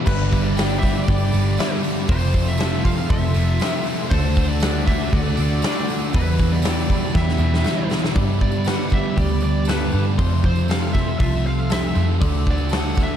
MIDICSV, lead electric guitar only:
0, 0, Header, 1, 2, 480
1, 0, Start_track
1, 0, Key_signature, 1, "major"
1, 0, Tempo, 506329
1, 58, Time_signature, 4, 2, 24, 8
1, 12482, End_track
2, 0, Start_track
2, 0, Title_t, "Lead electric guitar"
2, 0, Program_c, 0, 29
2, 70, Note_on_c, 0, 71, 82
2, 417, Note_on_c, 0, 74, 104
2, 435, Note_off_c, 0, 71, 0
2, 742, Note_off_c, 0, 74, 0
2, 746, Note_on_c, 0, 76, 102
2, 981, Note_off_c, 0, 76, 0
2, 985, Note_on_c, 0, 74, 98
2, 1683, Note_off_c, 0, 74, 0
2, 1999, Note_on_c, 0, 72, 89
2, 2354, Note_on_c, 0, 76, 102
2, 2358, Note_off_c, 0, 72, 0
2, 2696, Note_off_c, 0, 76, 0
2, 2700, Note_on_c, 0, 77, 95
2, 2941, Note_off_c, 0, 77, 0
2, 2945, Note_on_c, 0, 76, 92
2, 3622, Note_off_c, 0, 76, 0
2, 3885, Note_on_c, 0, 72, 86
2, 4246, Note_on_c, 0, 74, 100
2, 4261, Note_off_c, 0, 72, 0
2, 4610, Note_off_c, 0, 74, 0
2, 4613, Note_on_c, 0, 76, 105
2, 4861, Note_off_c, 0, 76, 0
2, 4877, Note_on_c, 0, 74, 99
2, 5548, Note_off_c, 0, 74, 0
2, 5833, Note_on_c, 0, 71, 87
2, 6186, Note_on_c, 0, 74, 101
2, 6194, Note_off_c, 0, 71, 0
2, 6787, Note_off_c, 0, 74, 0
2, 6791, Note_on_c, 0, 76, 102
2, 7465, Note_off_c, 0, 76, 0
2, 7975, Note_on_c, 0, 74, 78
2, 8222, Note_off_c, 0, 74, 0
2, 8226, Note_on_c, 0, 78, 109
2, 8468, Note_off_c, 0, 78, 0
2, 8472, Note_on_c, 0, 76, 86
2, 8710, Note_off_c, 0, 76, 0
2, 8716, Note_on_c, 0, 74, 91
2, 8926, Note_off_c, 0, 74, 0
2, 8938, Note_on_c, 0, 74, 90
2, 9180, Note_on_c, 0, 71, 81
2, 9183, Note_off_c, 0, 74, 0
2, 9513, Note_off_c, 0, 71, 0
2, 9909, Note_on_c, 0, 72, 84
2, 10126, Note_off_c, 0, 72, 0
2, 10145, Note_on_c, 0, 77, 108
2, 10359, Note_off_c, 0, 77, 0
2, 10362, Note_on_c, 0, 76, 90
2, 10592, Note_off_c, 0, 76, 0
2, 10609, Note_on_c, 0, 76, 97
2, 10860, Note_off_c, 0, 76, 0
2, 10869, Note_on_c, 0, 77, 99
2, 11103, Note_off_c, 0, 77, 0
2, 11106, Note_on_c, 0, 76, 87
2, 11436, Note_off_c, 0, 76, 0
2, 11855, Note_on_c, 0, 74, 92
2, 12082, Note_off_c, 0, 74, 0
2, 12097, Note_on_c, 0, 78, 111
2, 12323, Note_off_c, 0, 78, 0
2, 12351, Note_on_c, 0, 76, 84
2, 12482, Note_off_c, 0, 76, 0
2, 12482, End_track
0, 0, End_of_file